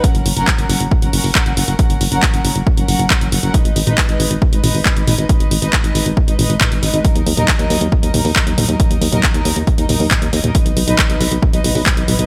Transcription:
<<
  \new Staff \with { instrumentName = "String section" } { \time 4/4 \key ees \minor \tempo 4 = 137 <ges des' bes' ges''>8 r16 <ges des' bes' ges''>8 <ges des' bes' ges''>8 r8 <ges des' bes' ges''>16 <ges des' bes' ges''>8 <ges des' bes' ges''>16 <ges des' bes' ges''>16 <ges des' bes' ges''>16 <ges des' bes' ges''>16 | <ges des' bes' ges''>8 r16 <ges des' bes' ges''>8 <ges des' bes' ges''>8 r8 <ges des' bes' ges''>16 <ges des' bes' ges''>8 <ges des' bes' ges''>16 <ges des' bes' ges''>16 <ges des' bes' ges''>16 <ges des' bes' ges''>16 | <aes ees' ces'' ees''>8 r16 <aes ees' ces'' ees''>8 <aes ees' ces'' ees''>8 r8 <aes ees' ces'' ees''>16 <aes ees' ces'' ees''>8 <aes ees' ces'' ees''>16 <aes ees' ces'' ees''>16 <aes ees' ces'' ees''>16 <aes ees' ces'' ees''>16 | <aes ees' ces'' ees''>8 r16 <aes ees' ces'' ees''>8 <aes ees' ces'' ees''>8 r8 <aes ees' ces'' ees''>16 <aes ees' ces'' ees''>8 <aes ees' ces'' ees''>16 <aes ees' ces'' ees''>16 <aes ees' ces'' ees''>16 <aes ees' ces'' ees''>16 |
<ges ees' bes' ees''>8 r16 <ges ees' bes' ees''>8 <ges ees' bes' ees''>8 r8 <ges ees' bes' ees''>16 <ges ees' bes' ees''>8 <ges ees' bes' ees''>16 <ges ees' bes' ees''>16 <ges ees' bes' ees''>16 <ges ees' bes' ees''>16 | <ges ees' bes' ees''>8 r16 <ges ees' bes' ees''>8 <ges ees' bes' ees''>8 r8 <ges ees' bes' ees''>16 <ges ees' bes' ees''>8 <ges ees' bes' ees''>16 <ges ees' bes' ees''>16 <ges ees' bes' ees''>16 <ges ees' bes' ees''>16 | <fis dis' b' dis''>8 r16 <fis dis' b' dis''>8 <fis dis' b' dis''>8 r8 <fis dis' b' dis''>16 <fis dis' b' dis''>8 <fis dis' b' dis''>16 <fis dis' b' dis''>16 <fis dis' b' dis''>16 <fis dis' b' dis''>16 | }
  \new Staff \with { instrumentName = "FM bass" } { \clef bass \time 4/4 \key ees \minor r16 ges,,16 ges,,16 ges,,16 r16 ges,,16 ges,,16 ges,,16 r16 ges,,16 ges,,16 ges,,16 r16 ges,,16 ges,,16 ges,,16 | r16 ges,,16 ges,,16 ges,,16 r16 ges,,16 ges,,16 ges,,16 r16 ges,,16 ges,,16 ges,,16 r16 ges,,16 ges,,16 ges,,16 | r16 aes,,16 aes,,16 aes,,16 r16 aes,,16 aes,,16 aes,,16 r16 aes,,16 aes,,16 aes,,16 r16 aes,,16 aes,,16 aes,,16 | r16 aes,,16 aes,,16 aes,,16 r16 aes,,16 aes,,16 aes,,16 r16 aes,,16 aes,,16 aes,,16 r16 aes,,16 aes,,16 aes,,16 |
r16 ees,16 ees,16 ees,16 r16 ees,16 ees,16 ees,16 r16 ees,16 ees,16 ees,16 r16 ees,16 ees,16 ees,16 | r16 ees,16 ees,16 ees,16 r16 ees,16 ees,16 ees,16 r16 ees,16 ees,16 ees,16 r16 ees,16 ees,16 ees,16 | r16 b,,16 b,,16 b,,16 r16 b,,16 b,,16 b,,16 r16 b,,16 b,,16 b,,16 r16 b,,16 b,,16 b,,16 | }
  \new DrumStaff \with { instrumentName = "Drums" } \drummode { \time 4/4 <hh bd>16 hh16 hho16 hh16 <hc hh bd>16 hh16 hho16 hh16 bd16 hh16 hho16 hho16 <hc hh bd>16 hh16 hho16 hh16 | <hh bd>16 hh16 hho16 hh16 <hc hh bd>16 hh16 hho16 hh16 bd16 hh16 hho16 hh16 <hc hh bd>16 hh16 hho16 hh16 | <hh bd>16 hh16 hho16 <hh toml>16 <hc hh bd>16 hh16 hho16 hh16 bd16 hh16 <hho toml>16 hho16 <hc hh bd>16 hh16 <hho toml>16 hh16 | <hh bd>16 hh16 hho16 hh16 <hc hh bd>16 hh16 hho16 hh16 bd16 hh16 <hho toml>16 hh16 <hc hh bd toml>16 hh16 hho16 hh16 |
<hh bd>16 hh16 hho16 <hh toml>16 <hc hh bd>16 hh16 hho16 hh16 bd16 hh16 <hho toml>16 hho16 <hc hh bd>16 hh16 <hho toml>16 hh16 | <hh bd>16 hh16 hho16 <hh toml>16 <hc hh bd>16 hh16 hho16 hh16 <hh bd>16 hh16 <hho toml>16 hho16 <hc hh bd toml>16 hh16 hho16 <hh toml>16 | <hh bd>16 hh16 hho16 <hh toml>16 <hc hh bd>16 hh16 hho16 hh16 bd16 hh16 <hho toml>16 hho16 <hc hh bd>16 hh16 <hho toml>16 hh16 | }
>>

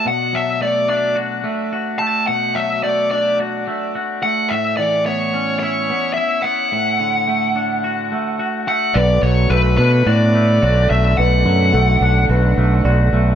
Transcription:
<<
  \new Staff \with { instrumentName = "Lead electric guitar" } { \time 4/4 \key b \minor \tempo 4 = 108 fis''8 e''8 d''8 d''8 r4. a''8 | fis''8 e''8 d''8 d''8 r4. fis''8 | e''8 d''8 cis''4 cis''4 e''8 fis''8~ | fis''2.~ fis''8 fis''8 |
d''8 cis''8 b'8 b'8 d''4. e''8 | fis''2 r2 | }
  \new Staff \with { instrumentName = "Felt piano" } { \time 4/4 \key b \minor r1 | r1 | r1 | r1 |
b'4 b'4 d''4 cis''4 | b'4 a'4 b'4 d''4 | }
  \new Staff \with { instrumentName = "String section" } { \time 4/4 \key b \minor << { r1 | r1 | r1 | r1 |
b1 | d'1 | } \\ { r1 | r1 | r1 | r1 |
<d a>1~ | <d a>1 | } >> }
  \new Staff \with { instrumentName = "Clean electric guitar" } { \time 4/4 \key b \minor b,8 fis8 a8 d'8 fis'8 a8 fis'8 a8 | b,8 fis8 a8 d'8 fis'8 a8 fis'8 a8 | a,8 e8 b8 cis'8 e'8 b8 e'8 b8 | a,8 d8 a8 d'8 fis'8 a8 fis'8 a8 |
b,8 fis8 a8 d'8 fis'8 a8 fis'8 a8 | b,8 fis8 a8 d'8 fis'8 a8 fis'8 a8 | }
  \new Staff \with { instrumentName = "Fingered electric bass" } { \clef bass \time 4/4 \key b \minor r1 | r1 | r1 | r1 |
b,,8 b,,8 b,,8 b,8 a,4 b,,8 b,,8 | b,,8 fis,8 b,,8 b,,8 b,,8 b,,8 b,,8 b,,8 | }
>>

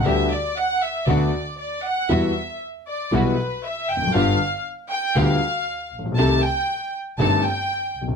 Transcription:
<<
  \new Staff \with { instrumentName = "Violin section" } { \time 4/4 \key g \major \tempo 4 = 118 e''8 d''8 fis''8 e''8 d''4 d''8 fis''8 | e''4 r8 d''8 b'4 e''8 g''8 | f''4 r8 g''8 f''4. r8 | a''8 g''4 r8 a''8 g''4 r8 | }
  \new Staff \with { instrumentName = "String section" } { \time 4/4 \key g \major <b d' g'>8 r4. <b d' fis'>8 r4. | <g e' fis'>8 r4. <g e' fis'>8 r4. | <b f' g'>8 r4. <b f' g'>8 r4. | <c' ees' a'>8 r4. <c' ees' a'>8 r4. | }
  \new Staff \with { instrumentName = "Grand piano" } { \clef bass \time 4/4 \key g \major <d, d g b g'>8 r4. <d, d a b fis'>8 r4. | <e, e g b fis'>8 r4. <b,, b, e g b fis'>8 r4 r32 e,32 f,32 fis,32 | <g,, g, d g b f'>8 r4. <d, d g b f'>8 r4 r32 a,,32 bes,,32 b,,32 | <c, c ees a c' g'>8 r4. <g,, g, ees a c' g'>8 r4 r32 b,,32 c,32 r32 | }
  \new Staff \with { instrumentName = "Double bass" } { \clef bass \time 4/4 \key g \major d,8 r4. d,8 r4. | e,8 r4. b,,8 r4 f,,8 | g,,8 r4. d,8 r4 bes,,8 | c,8 r4. g,,8 r4 c,8 | }
>>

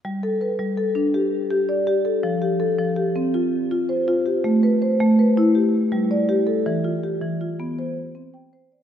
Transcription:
<<
  \new Staff \with { instrumentName = "Marimba" } { \time 12/8 \key g \mixolydian \tempo 4. = 108 r8 a'8 b'4 a'4 g'4. d''4 a'8~ | a'8 g'8 a'4 g'4 f'4. c''4 g'8~ | g'8 b'8 c''4 b'4 g'4. d''4 a'8~ | a'8 f'8 g'4 f'4 c''4. g''4 d''8 | }
  \new Staff \with { instrumentName = "Marimba" } { \time 12/8 \key g \mixolydian g4 r8 g4 d'4 r8 g'4 g'4 | f4 r8 f4 c'4 r8 f'4 f'4 | a4 r8 a4 e'8 r4 g4 g'4 | e4 r8 e4 b8 r4 c'4 c''4 | }
>>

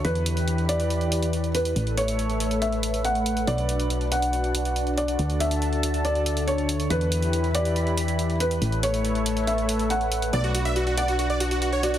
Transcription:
<<
  \new Staff \with { instrumentName = "Felt piano" } { \time 4/4 \key b \minor \tempo 4 = 140 b'4. d''2 b'8~ | b'8 cis''4. e''4 fis''4 | d''4. fis''2 d''8~ | d''8 e''4. d''4 cis''4 |
b'4. d''2 b'8~ | b'8 cis''4. e''4 fis''4 | d''4. fis''2 d''8 | }
  \new Staff \with { instrumentName = "Analog synth pad" } { \time 4/4 \key b \minor << { <e e' b' b''>1 | <a a' cis'' e''>1 | fis'1 | <d a' a''>1 |
<e e' b' b''>1 | <a a' cis'' e''>1 | fis'1 | } \\ { g'1 | b'1 | d'1~ | d'1 |
g'1 | b'1 | d'1 | } >> }
  \new Staff \with { instrumentName = "Supersaw synth" } { \time 4/4 \key b \minor r1 | r1 | r1 | r1 |
r1 | r1 | d''16 fis'16 fis'16 e''16 fis'16 fis'16 d''16 fis'16 fis'16 d''16 fis'16 fis'16 fis'16 cis''16 fis'16 fis'16 | }
  \new Staff \with { instrumentName = "FM bass" } { \clef bass \time 4/4 \key b \minor e,1 | a,,1 | b,,1 | d,1 |
e,1 | a,,1 | b,,1 | }
  \new DrumStaff \with { instrumentName = "Drums" } \drummode { \time 4/4 hh16 hh16 hh16 hh16 hh16 hh16 hh16 hh16 hh16 hh16 hh16 hh16 hh16 hh16 hh16 hh16 | hh16 hh16 hh16 hh16 hh16 hh16 hh16 hh16 hh16 hh16 hh16 hh16 hh16 hh16 hh16 hh16 | hh16 hh16 hh16 hh16 hh16 hh16 hh16 hh16 hh16 hh16 hh16 hh16 hh16 hh16 hh16 hh16 | hh16 hh16 hh16 hh16 hh16 hh16 hh16 hh16 hh16 hh16 hh16 hh16 hh16 hh16 hh16 hh16 |
hh16 hh16 hh16 hh16 hh16 hh16 hh16 hh16 hh16 hh16 hh16 hh16 hh16 hh16 hh16 hh16 | hh16 hh16 hh16 hh16 hh16 hh16 hh16 hh16 hh16 hh16 hh16 hh16 hh16 hh16 hh16 hh16 | hh16 hh16 hh16 hh16 hh16 hh16 hh16 hh16 hh16 hh16 hh16 hh16 hh16 hh16 hh16 hh16 | }
>>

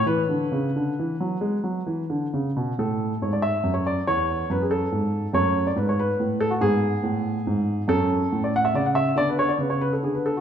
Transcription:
<<
  \new Staff \with { instrumentName = "Grand piano" } { \time 12/8 \key a \major \tempo 4. = 93 b'1~ b'4. r8 | a'4 cis''16 d''16 e''8. cis''16 d''8 cis''4 b'16 gis'16 a'4. | cis''8. d''16 b'16 cis''16 b'4 a'16 fis'16 gis'2. | a'4~ a'16 d''16 fis''16 e''16 d''16 fis''16 e''8 d''16 b'16 cis''16 d''16 b'16 cis''16 b'16 a'16 gis'16 b'16 a'16 fis'16 | }
  \new Staff \with { instrumentName = "Grand piano" } { \clef bass \time 12/8 \key a \major << { r1. | a1. | a2. b2. | cis'2. b2. | } \\ { e8 d8 cis8 d8 e8 fis8 gis8 fis8 e8 d8 cis8 b,8 | a,4 gis,4 fis,4 e,4 fis,4 gis,4 | fis,4 gis,4 a,4 gis,4 a,4 gis,4 | fis,4 a,4 cis4 d4 cis4 d4 | } >> }
>>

